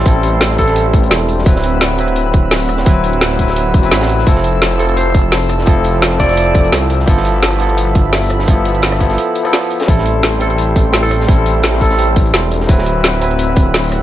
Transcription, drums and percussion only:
0.06 kick loud
0.06 closed hi-hat loud
0.06 closed hi-hat medium
0.23 closed hi-hat medium
0.41 snare loud
0.41 closed hi-hat medium
0.41 closed hi-hat loud
0.50 snare soft
0.58 kick medium
0.58 closed hi-hat medium
0.68 snare soft
0.68 closed hi-hat soft
0.76 closed hi-hat medium
0.76 closed hi-hat loud
0.94 kick loud
0.94 closed hi-hat medium
1.03 closed hi-hat soft
1.11 snare loud
1.11 closed hi-hat loud
1.11 closed hi-hat medium
1.29 closed hi-hat medium
1.29 open hi-hat medium
1.38 snare soft
1.46 kick loud
1.46 closed hi-hat medium
1.56 snare medium
1.64 closed hi-hat medium
1.81 snare loud
1.81 closed hi-hat medium
1.90 closed hi-hat soft
1.98 closed hi-hat medium
2.08 closed hi-hat soft
2.16 closed hi-hat medium
2.33 kick loud
2.33 closed hi-hat medium
2.51 snare loud
2.51 closed hi-hat medium
2.51 open hi-hat medium
2.69 cross-stick soft
2.69 closed hi-hat medium
2.69 open hi-hat medium
2.77 snare medium
2.86 kick loud
2.86 closed hi-hat medium
3.04 closed hi-hat medium
3.13 closed hi-hat soft
3.21 snare loud
3.21 closed hi-hat medium
3.30 snare soft
3.30 closed hi-hat soft
3.39 kick medium
3.39 closed hi-hat medium
3.48 snare soft
3.48 closed hi-hat soft
3.56 closed hi-hat medium
3.74 kick loud
3.74 closed hi-hat medium
3.83 closed hi-hat soft
3.91 snare loud
3.91 closed hi-hat medium
4.01 snare loud
4.01 closed hi-hat medium
4.09 closed hi-hat medium
4.09 open hi-hat medium
4.19 snare soft
4.27 kick loud
4.27 closed hi-hat medium
4.27 closed hi-hat loud
4.36 snare soft
4.44 closed hi-hat medium
4.62 snare loud
4.62 closed hi-hat medium
4.71 closed hi-hat soft
4.79 closed hi-hat medium
4.89 closed hi-hat soft
4.97 closed hi-hat medium
5.14 kick loud
5.14 closed hi-hat medium
5.32 snare loud
5.32 closed hi-hat medium
5.32 open hi-hat medium
5.49 cross-stick soft
5.49 closed hi-hat medium
5.49 open hi-hat medium
5.59 snare medium
5.66 kick loud
5.66 closed hi-hat medium
5.84 closed hi-hat medium
6.02 snare loud
6.02 closed hi-hat medium
6.11 snare soft
6.20 kick medium
6.20 closed hi-hat medium
6.29 snare soft
6.29 closed hi-hat soft
6.37 closed hi-hat medium
6.55 kick loud
6.55 closed hi-hat medium
6.64 closed hi-hat soft
6.72 snare loud
6.72 closed hi-hat medium
6.72 closed hi-hat loud
6.90 closed hi-hat medium
6.90 open hi-hat medium
6.99 snare soft
7.08 kick loud
7.08 closed hi-hat medium
7.17 snare soft
7.25 closed hi-hat medium
7.43 snare loud
7.43 closed hi-hat loud
7.43 closed hi-hat medium
7.53 closed hi-hat soft
7.60 closed hi-hat medium
7.69 closed hi-hat soft
7.78 closed hi-hat medium
7.78 closed hi-hat loud
7.95 kick loud
7.95 closed hi-hat medium
8.13 snare loud
8.13 closed hi-hat loud
8.13 open hi-hat medium
8.30 cross-stick soft
8.30 closed hi-hat medium
8.30 open hi-hat medium
8.39 snare medium
8.48 kick loud
8.48 closed hi-hat medium
8.48 closed hi-hat loud
8.65 closed hi-hat medium
8.75 closed hi-hat soft
8.82 snare loud
8.82 closed hi-hat loud
8.92 cross-stick medium
8.92 snare soft
8.92 closed hi-hat soft
9.00 kick medium
9.00 closed hi-hat medium
9.10 snare soft
9.10 closed hi-hat soft
9.18 closed hi-hat medium
9.18 closed hi-hat loud
9.35 closed hi-hat medium
9.45 cross-stick soft
9.45 closed hi-hat soft
9.53 snare loud
9.53 closed hi-hat loud
9.53 closed hi-hat medium
9.62 closed hi-hat soft
9.70 closed hi-hat medium
9.70 open hi-hat medium
9.80 snare loud
9.80 closed hi-hat medium
9.88 kick loud
9.88 closed hi-hat medium
9.88 closed hi-hat loud
9.98 snare soft
10.06 closed hi-hat medium
10.23 snare loud
10.23 closed hi-hat medium
10.23 closed hi-hat loud
10.32 closed hi-hat soft
10.40 closed hi-hat medium
10.50 closed hi-hat soft
10.58 closed hi-hat loud
10.76 kick loud
10.76 closed hi-hat medium
10.93 snare loud
10.93 closed hi-hat loud
10.93 open hi-hat medium
11.11 cross-stick soft
11.11 closed hi-hat medium
11.11 open hi-hat medium
11.21 snare medium
11.28 kick loud
11.28 closed hi-hat medium
11.28 closed hi-hat loud
11.46 closed hi-hat medium
11.63 snare loud
11.63 closed hi-hat medium
11.63 closed hi-hat loud
11.73 snare soft
11.81 kick medium
11.81 closed hi-hat medium
11.90 snare soft
11.90 closed hi-hat soft
11.99 closed hi-hat loud
11.99 closed hi-hat medium
12.16 kick loud
12.16 closed hi-hat medium
12.26 closed hi-hat soft
12.34 snare loud
12.34 closed hi-hat loud
12.34 closed hi-hat medium
12.51 closed hi-hat medium
12.51 open hi-hat medium
12.60 snare soft
12.69 kick loud
12.69 closed hi-hat medium
12.78 snare medium
12.86 closed hi-hat medium
13.04 snare loud
13.04 closed hi-hat medium
13.04 closed hi-hat loud
13.13 closed hi-hat soft
13.21 closed hi-hat medium
13.31 closed hi-hat soft
13.39 closed hi-hat loud
13.39 closed hi-hat medium
13.56 kick loud
13.56 closed hi-hat medium
13.74 snare loud
13.74 closed hi-hat medium
13.74 open hi-hat medium
13.92 cross-stick soft
13.92 closed hi-hat medium
13.92 open hi-hat medium

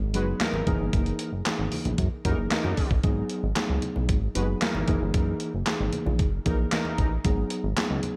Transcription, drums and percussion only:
0.14 closed hi-hat medium
0.14 muted conga medium
0.40 snare loud
0.40 clap medium
0.40 closed hi-hat medium
0.40 high conga medium
0.54 high conga medium
0.67 kick medium
0.67 closed hi-hat medium
0.67 high conga medium
0.93 kick loud
0.93 closed hi-hat medium
0.93 muted conga medium
1.06 closed hi-hat medium
1.19 closed hi-hat medium
1.45 snare loud
1.45 clap loud
1.45 closed hi-hat loud
1.45 high conga medium
1.72 open hi-hat medium
1.72 low conga medium
1.85 closed hi-hat medium
1.85 low conga medium
1.98 kick loud
1.98 closed hi-hat medium
1.98 muted conga soft
2.25 kick medium
2.25 closed hi-hat medium
2.25 muted conga soft
2.51 snare loud
2.51 clap medium
2.51 closed hi-hat medium
2.51 high conga medium
2.64 high conga medium
2.77 kick medium
2.77 open hi-hat medium
2.77 high conga medium
2.91 kick medium
3.03 kick loud
3.03 closed hi-hat medium
3.03 muted conga medium
3.30 closed hi-hat medium
3.56 snare loud
3.56 clap medium
3.56 closed hi-hat loud
3.56 high conga medium
3.82 closed hi-hat medium
3.82 muted conga soft
3.82 low conga medium
3.96 low conga medium
4.09 kick loud
4.09 closed hi-hat medium
4.09 muted conga medium
4.35 closed hi-hat medium
4.35 muted conga medium
4.61 snare loud
4.61 clap medium
4.61 closed hi-hat loud
4.61 high conga medium
4.75 high conga medium
4.87 kick medium
4.87 closed hi-hat medium
4.87 high conga medium
5.14 kick loud
5.14 closed hi-hat medium
5.14 muted conga medium
5.40 closed hi-hat medium
5.66 snare loud
5.66 clap loud
5.66 closed hi-hat loud
5.66 high conga medium
5.93 closed hi-hat medium
5.93 muted conga soft
5.93 low conga medium
6.07 low conga medium
6.19 kick loud
6.19 closed hi-hat medium
6.19 muted conga medium
6.46 kick medium
6.46 closed hi-hat medium
6.46 muted conga soft
6.71 snare loud
6.71 clap medium
6.71 closed hi-hat medium
6.71 high conga medium
6.85 high conga medium
6.98 kick loud
6.98 closed hi-hat medium
6.98 high conga medium
7.25 kick loud
7.25 closed hi-hat medium
7.25 muted conga medium
7.50 closed hi-hat medium
7.77 snare loud
7.77 clap loud
7.77 closed hi-hat medium
7.77 high conga medium
8.03 closed hi-hat medium
8.03 muted conga soft
8.03 low conga medium

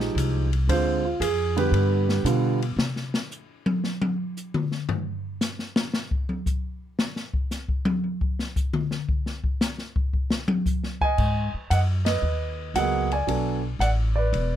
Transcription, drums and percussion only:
0.00 snare soft
0.18 hi-hat pedal medium
0.18 ride medium
0.53 ride soft
0.69 ride medium
1.22 hi-hat pedal medium
1.22 ride medium
1.57 ride soft
1.74 ride medium
2.09 snare medium
2.26 hi-hat pedal medium
2.26 ride medium
2.62 ride soft
2.79 snare loud
2.96 snare soft
3.14 snare medium
3.31 hi-hat pedal medium
3.66 high tom loud
3.84 snare medium
4.02 high tom medium
4.37 hi-hat pedal medium
4.54 mid tom loud
4.72 snare soft
4.89 floor tom medium
5.41 snare medium
5.41 hi-hat pedal soft
5.59 snare soft
5.76 snare medium
5.93 snare medium
6.11 kick medium
6.29 high tom medium
6.46 kick medium
6.46 hi-hat pedal medium
6.99 snare loud
7.16 snare soft
7.34 kick medium
7.51 snare soft
7.51 hi-hat pedal medium
7.68 kick medium
7.85 high tom loud
8.04 high tom soft
8.21 kick medium
8.39 snare soft
8.56 kick medium
8.56 hi-hat pedal medium
8.73 mid tom loud
8.91 snare soft
9.09 kick medium
9.26 snare soft
9.44 kick medium
9.61 snare medium
9.61 hi-hat pedal medium
9.78 snare soft
9.96 kick medium
10.13 kick medium
10.30 snare loud
10.48 high tom loud
10.66 kick medium
10.66 hi-hat pedal medium
10.84 snare soft
11.01 kick medium
11.18 kick medium
11.18 crash medium
11.71 hi-hat pedal soft
11.71 ride medium
12.06 snare medium
12.06 ride medium
12.75 hi-hat pedal soft
12.75 ride medium
13.12 ride soft
13.28 ride medium
13.81 hi-hat pedal medium
13.81 ride medium
14.34 ride soft

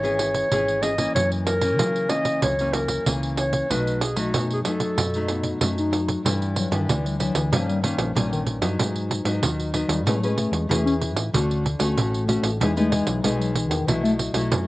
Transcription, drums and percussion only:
0.05 pandeiro soft
0.19 pandeiro medium
0.34 pandeiro medium
0.52 pandeiro medium
0.68 pandeiro soft
0.83 pandeiro medium
0.98 pandeiro medium
1.16 pandeiro medium
1.32 pandeiro soft
1.47 pandeiro medium
1.61 pandeiro medium
1.79 pandeiro medium
1.96 pandeiro soft
2.09 pandeiro medium
2.25 pandeiro medium
2.42 pandeiro medium
2.59 pandeiro soft
2.73 pandeiro medium
2.88 pandeiro medium
3.06 pandeiro medium
3.23 pandeiro soft
3.37 pandeiro medium
3.53 pandeiro medium
3.71 pandeiro medium
3.87 pandeiro soft
4.01 pandeiro medium
4.16 pandeiro medium
4.34 pandeiro medium
4.50 pandeiro soft
4.65 pandeiro medium
4.80 pandeiro medium
4.98 pandeiro medium
5.14 pandeiro soft
5.28 pandeiro medium
5.43 pandeiro medium
5.61 pandeiro medium
5.78 pandeiro soft
5.93 pandeiro medium
6.08 pandeiro medium
6.26 pandeiro medium
6.42 pandeiro soft
6.56 pandeiro medium
6.72 pandeiro medium
6.89 pandeiro medium
7.06 pandeiro soft
7.20 pandeiro medium
7.35 pandeiro medium
7.53 pandeiro medium
7.69 pandeiro soft
7.84 pandeiro medium
7.98 pandeiro medium
8.16 pandeiro medium
8.33 pandeiro soft
8.47 pandeiro medium
8.62 pandeiro medium
8.79 pandeiro medium
8.96 pandeiro soft
9.11 pandeiro medium
9.25 pandeiro medium
9.43 pandeiro medium
9.60 pandeiro soft
9.74 pandeiro medium
9.89 pandeiro medium
10.07 pandeiro medium
10.23 pandeiro soft
10.38 pandeiro medium
10.53 pandeiro medium
10.71 pandeiro medium
10.87 pandeiro soft
11.01 pandeiro medium
11.16 pandeiro medium
11.34 pandeiro medium
11.51 pandeiro soft
11.66 pandeiro medium
11.80 pandeiro medium
11.98 pandeiro medium
12.14 pandeiro soft
12.29 pandeiro medium
12.43 pandeiro medium
12.61 pandeiro medium
12.77 pandeiro soft
12.92 pandeiro medium
13.07 pandeiro medium
13.24 pandeiro medium
13.41 pandeiro soft
13.55 pandeiro medium
13.71 pandeiro medium
13.88 pandeiro medium
14.05 pandeiro soft
14.19 pandeiro medium
14.34 pandeiro medium
14.52 pandeiro medium

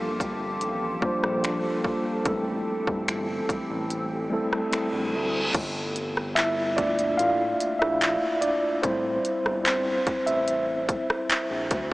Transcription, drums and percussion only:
0.20 kick medium
0.20 closed hi-hat medium
0.61 closed hi-hat medium
1.02 kick medium
1.24 cross-stick medium
1.44 finger snap loud
1.44 closed hi-hat medium
1.84 kick medium
2.25 kick loud
2.25 closed hi-hat medium
2.87 kick loud
3.08 finger snap loud
3.08 closed hi-hat medium
3.49 kick medium
3.49 closed hi-hat medium
3.90 closed hi-hat medium
4.53 cross-stick medium
4.73 finger snap loud
4.73 closed hi-hat medium
5.54 kick loud
5.54 closed hi-hat medium
5.54 crash loud
5.96 closed hi-hat medium
6.17 cross-stick medium
6.37 clap loud
6.37 closed hi-hat medium
6.78 kick medium
6.78 closed hi-hat medium
6.99 closed hi-hat soft
7.19 closed hi-hat medium
7.60 closed hi-hat medium
7.82 cross-stick loud
8.02 clap loud
8.02 closed hi-hat medium
8.42 closed hi-hat medium
8.83 kick loud
8.83 closed hi-hat medium
9.25 closed hi-hat medium
9.46 cross-stick medium
9.66 clap loud
9.66 closed hi-hat medium
10.07 kick medium
10.07 closed hi-hat medium
10.27 closed hi-hat medium
10.48 closed hi-hat medium
10.89 kick loud
10.89 closed hi-hat medium
11.10 cross-stick loud
11.30 clap loud
11.30 closed hi-hat medium
11.71 kick medium
11.71 closed hi-hat medium

